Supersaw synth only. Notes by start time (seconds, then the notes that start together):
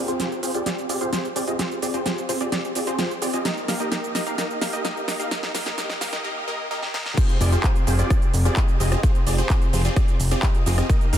0.08 C4 F4 G4 G#4 C5
0.20 C4 F4 G4 G#4 C5
0.43 C4 F4 G4 G#4 C5
0.55 C4 F4 G4 G#4 D5
0.66 C4 F4 G4 G#4 D5
0.89 C4 F4 G4 G#4 D5
1.01 C4 F4 G4 G#4 C5
1.13 C4 F4 G4 G#4 C5
1.36 C4 F4 G4 G#4 D5
1.48 C4 F4 G4 G#4 D#5
1.59 C4 F4 G4 G#4 C5
1.82 C4 F4 G4 G#4 D5
1.94 C4 F4 G4 G#4 C5
2.06 C4 F4 G4 G#4 C5
2.29 C4 F4 G4 G#4 C5
2.41 C4 F4 G4 G#4 D5
2.52 C4 F4 G4 G#4 D5
2.76 C4 F4 G4 G#4 D5
2.87 C4 F4 G4 G#4 C5
2.99 C4 F4 G4 G#4 C5
3.22 C4 F4 G4 G#4 D5
3.34 C4 F4 G4 G#4 D#5
3.45 A#3 D#4 G4 A#4 D#5
3.68 A#3 D#4 G4 A#4 F5
3.80 A#3 D#4 G4 A#4 D#5
3.92 A#3 D#4 G4 A#4 D#5
4.15 A#3 D#4 G4 A#4 D#5
4.27 A#3 D#4 G4 A#4 F5
4.38 A#3 D#4 G4 A#4 D#5
4.61 A#3 D#4 G4 A#4 F5
4.73 A#3 D#4 G4 A#4 D#5
4.85 A#3 D#4 G4 A#4 D#5
5.08 A#3 D#4 G4 A#4 D#5
5.20 A#3 D#4 G4 A#4 F5
5.31 A#3 D#4 G4 A#4 D#5
5.54 A#3 D#4 G4 A#4 F5
5.66 A#3 D#4 G4 A#4 D#5
5.78 A#3 D#4 G4 A#4 D#5
6.01 A#3 D#4 G4 A#4 F5
6.13 A#3 D#4 G4 A#4 D#5
6.24 A#3 D#4 G4 A#4 D#5
6.48 A#3 D#4 G4 A#4 D#5
6.71 A#3 D#4 G4 A#4 D#5
6.94 A#3 D#4 G4 A#4 D#5
7.17 C4 F4 G4 G#4 C5
7.41 C4 F4 G4 G#4 D5
7.52 C4 F4 G4 G#4 C5
7.64 C4 F4 G4 G#4 C5
7.87 C4 F4 G4 G#4 C5
7.99 C4 F4 G4 G#4 D5
8.10 C4 F4 G4 G#4 D5
8.45 C4 F4 G4 G#4 D5
8.57 C4 F4 D#5
8.80 C4 F4 G4 G#4 D#5
8.92 C4 F4 G4 G#4 D#5
9.03 C4 F4 G4 G#4 C5
9.27 C4 F4 G4 G#4 D5
9.38 C4 F4 G4 G#4 C5
9.50 C4 F4
9.73 C4 F4 G4 G#4 C5
9.85 C4 F4 G4 G#4 D5
9.97 D5
10.31 C4 F4 G4 G#4 D5
10.43 C4 G#4 D#5
10.66 C4 F4 G4 G#4 D#5
10.78 C4 F4 G4 G#4 D#5
10.90 A#3 A#4
11.13 A#3 D#4 G4 A#4 F5